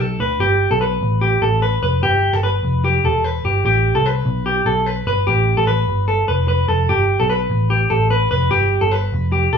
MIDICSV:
0, 0, Header, 1, 3, 480
1, 0, Start_track
1, 0, Tempo, 405680
1, 476, Time_signature, 4, 2, 24, 8
1, 11334, End_track
2, 0, Start_track
2, 0, Title_t, "Clean electric guitar"
2, 0, Program_c, 0, 27
2, 0, Note_on_c, 0, 69, 73
2, 235, Note_off_c, 0, 69, 0
2, 238, Note_on_c, 0, 71, 76
2, 477, Note_off_c, 0, 71, 0
2, 477, Note_on_c, 0, 67, 106
2, 815, Note_off_c, 0, 67, 0
2, 838, Note_on_c, 0, 69, 86
2, 952, Note_off_c, 0, 69, 0
2, 957, Note_on_c, 0, 71, 81
2, 1408, Note_off_c, 0, 71, 0
2, 1437, Note_on_c, 0, 67, 92
2, 1677, Note_off_c, 0, 67, 0
2, 1680, Note_on_c, 0, 69, 82
2, 1915, Note_off_c, 0, 69, 0
2, 1920, Note_on_c, 0, 71, 75
2, 2147, Note_off_c, 0, 71, 0
2, 2161, Note_on_c, 0, 71, 81
2, 2396, Note_off_c, 0, 71, 0
2, 2401, Note_on_c, 0, 67, 108
2, 2761, Note_off_c, 0, 67, 0
2, 2761, Note_on_c, 0, 69, 84
2, 2875, Note_off_c, 0, 69, 0
2, 2879, Note_on_c, 0, 71, 82
2, 3329, Note_off_c, 0, 71, 0
2, 3365, Note_on_c, 0, 67, 83
2, 3600, Note_off_c, 0, 67, 0
2, 3607, Note_on_c, 0, 69, 78
2, 3838, Note_off_c, 0, 69, 0
2, 3838, Note_on_c, 0, 71, 79
2, 4076, Note_off_c, 0, 71, 0
2, 4080, Note_on_c, 0, 67, 81
2, 4311, Note_off_c, 0, 67, 0
2, 4325, Note_on_c, 0, 67, 101
2, 4658, Note_off_c, 0, 67, 0
2, 4674, Note_on_c, 0, 69, 90
2, 4800, Note_off_c, 0, 69, 0
2, 4800, Note_on_c, 0, 71, 85
2, 5248, Note_off_c, 0, 71, 0
2, 5275, Note_on_c, 0, 67, 88
2, 5514, Note_on_c, 0, 69, 84
2, 5515, Note_off_c, 0, 67, 0
2, 5755, Note_off_c, 0, 69, 0
2, 5755, Note_on_c, 0, 71, 82
2, 5985, Note_off_c, 0, 71, 0
2, 5999, Note_on_c, 0, 71, 84
2, 6234, Note_on_c, 0, 67, 105
2, 6237, Note_off_c, 0, 71, 0
2, 6572, Note_off_c, 0, 67, 0
2, 6593, Note_on_c, 0, 69, 84
2, 6707, Note_off_c, 0, 69, 0
2, 6711, Note_on_c, 0, 71, 84
2, 7164, Note_off_c, 0, 71, 0
2, 7191, Note_on_c, 0, 69, 76
2, 7427, Note_off_c, 0, 69, 0
2, 7432, Note_on_c, 0, 71, 75
2, 7655, Note_off_c, 0, 71, 0
2, 7669, Note_on_c, 0, 71, 71
2, 7904, Note_off_c, 0, 71, 0
2, 7909, Note_on_c, 0, 69, 77
2, 8152, Note_off_c, 0, 69, 0
2, 8154, Note_on_c, 0, 67, 101
2, 8493, Note_off_c, 0, 67, 0
2, 8514, Note_on_c, 0, 69, 87
2, 8628, Note_off_c, 0, 69, 0
2, 8633, Note_on_c, 0, 71, 83
2, 9085, Note_off_c, 0, 71, 0
2, 9111, Note_on_c, 0, 67, 88
2, 9348, Note_on_c, 0, 69, 77
2, 9353, Note_off_c, 0, 67, 0
2, 9585, Note_off_c, 0, 69, 0
2, 9589, Note_on_c, 0, 71, 77
2, 9817, Note_off_c, 0, 71, 0
2, 9831, Note_on_c, 0, 71, 85
2, 10066, Note_on_c, 0, 67, 109
2, 10074, Note_off_c, 0, 71, 0
2, 10409, Note_off_c, 0, 67, 0
2, 10426, Note_on_c, 0, 69, 83
2, 10548, Note_off_c, 0, 69, 0
2, 10548, Note_on_c, 0, 71, 85
2, 11003, Note_off_c, 0, 71, 0
2, 11030, Note_on_c, 0, 67, 81
2, 11273, Note_on_c, 0, 69, 76
2, 11274, Note_off_c, 0, 67, 0
2, 11334, Note_off_c, 0, 69, 0
2, 11334, End_track
3, 0, Start_track
3, 0, Title_t, "Picked electric bass"
3, 0, Program_c, 1, 34
3, 0, Note_on_c, 1, 35, 93
3, 195, Note_off_c, 1, 35, 0
3, 232, Note_on_c, 1, 38, 83
3, 438, Note_off_c, 1, 38, 0
3, 469, Note_on_c, 1, 31, 104
3, 779, Note_off_c, 1, 31, 0
3, 836, Note_on_c, 1, 35, 96
3, 1142, Note_off_c, 1, 35, 0
3, 1198, Note_on_c, 1, 33, 88
3, 1606, Note_off_c, 1, 33, 0
3, 1675, Note_on_c, 1, 33, 81
3, 2084, Note_off_c, 1, 33, 0
3, 2155, Note_on_c, 1, 29, 86
3, 2360, Note_off_c, 1, 29, 0
3, 2397, Note_on_c, 1, 31, 104
3, 2703, Note_off_c, 1, 31, 0
3, 2757, Note_on_c, 1, 31, 104
3, 3063, Note_off_c, 1, 31, 0
3, 3111, Note_on_c, 1, 29, 97
3, 3521, Note_off_c, 1, 29, 0
3, 3598, Note_on_c, 1, 28, 92
3, 4005, Note_off_c, 1, 28, 0
3, 4078, Note_on_c, 1, 31, 87
3, 4281, Note_off_c, 1, 31, 0
3, 4314, Note_on_c, 1, 33, 110
3, 4621, Note_off_c, 1, 33, 0
3, 4675, Note_on_c, 1, 36, 103
3, 4981, Note_off_c, 1, 36, 0
3, 5033, Note_on_c, 1, 35, 99
3, 5441, Note_off_c, 1, 35, 0
3, 5511, Note_on_c, 1, 35, 95
3, 5920, Note_off_c, 1, 35, 0
3, 5995, Note_on_c, 1, 31, 88
3, 6199, Note_off_c, 1, 31, 0
3, 6239, Note_on_c, 1, 33, 92
3, 6543, Note_off_c, 1, 33, 0
3, 6600, Note_on_c, 1, 33, 98
3, 6904, Note_off_c, 1, 33, 0
3, 6958, Note_on_c, 1, 31, 103
3, 7364, Note_off_c, 1, 31, 0
3, 7440, Note_on_c, 1, 29, 96
3, 7846, Note_off_c, 1, 29, 0
3, 7910, Note_on_c, 1, 29, 90
3, 8116, Note_off_c, 1, 29, 0
3, 8155, Note_on_c, 1, 31, 97
3, 8461, Note_off_c, 1, 31, 0
3, 8515, Note_on_c, 1, 35, 90
3, 8821, Note_off_c, 1, 35, 0
3, 8875, Note_on_c, 1, 33, 95
3, 9283, Note_off_c, 1, 33, 0
3, 9355, Note_on_c, 1, 33, 93
3, 9764, Note_off_c, 1, 33, 0
3, 9835, Note_on_c, 1, 29, 96
3, 10039, Note_off_c, 1, 29, 0
3, 10073, Note_on_c, 1, 31, 102
3, 10381, Note_off_c, 1, 31, 0
3, 10435, Note_on_c, 1, 31, 98
3, 10742, Note_off_c, 1, 31, 0
3, 10795, Note_on_c, 1, 29, 91
3, 11204, Note_off_c, 1, 29, 0
3, 11273, Note_on_c, 1, 28, 98
3, 11334, Note_off_c, 1, 28, 0
3, 11334, End_track
0, 0, End_of_file